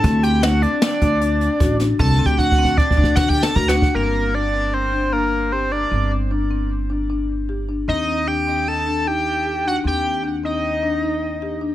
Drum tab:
HH |x--x--x--x--x--x--x--x--x--x--|------------------------------|------------------------------|------------------------------|
SD |------o-----o--------------o--|------------------o---o---o---|------------------------------|------------------------------|
BD |o--------------o--------o-----|o-o-o-o-o-o-o-o-o-o-o---o---o-|------------------------------|------------------------------|

HH |------------------------------|------------------------------|
SD |------------------------------|------------------------------|
BD |------------------------------|------------------------------|